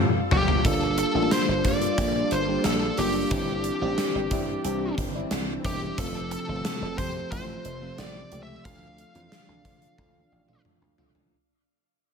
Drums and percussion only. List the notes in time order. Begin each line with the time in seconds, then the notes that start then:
0.31 floor tom
0.48 floor tom
0.65 kick, closed hi-hat
0.98 closed hi-hat
1.31 snare, closed hi-hat
1.65 kick, closed hi-hat
1.82 closed hi-hat
1.98 kick, closed hi-hat
2.31 closed hi-hat
2.64 snare, closed hi-hat
2.97 open hi-hat
3.31 kick, closed hi-hat
3.64 closed hi-hat
3.98 snare, closed hi-hat
4.31 kick, closed hi-hat
4.65 closed hi-hat
4.98 kick, closed hi-hat
5.31 snare, closed hi-hat
5.65 kick, closed hi-hat
5.98 kick, closed hi-hat
6.31 closed hi-hat
6.65 snare, closed hi-hat
6.98 kick, closed hi-hat
7.32 kick, closed hi-hat
7.65 closed hi-hat
7.98 snare, closed hi-hat
8.32 closed hi-hat
8.65 kick, closed hi-hat
8.98 closed hi-hat
9.15 closed hi-hat
9.32 snare, closed hi-hat
9.65 kick, closed hi-hat
9.82 closed hi-hat
9.98 kick, high tom
10.15 high tom
10.49 mid tom
10.65 mid tom
10.98 floor tom
11.15 floor tom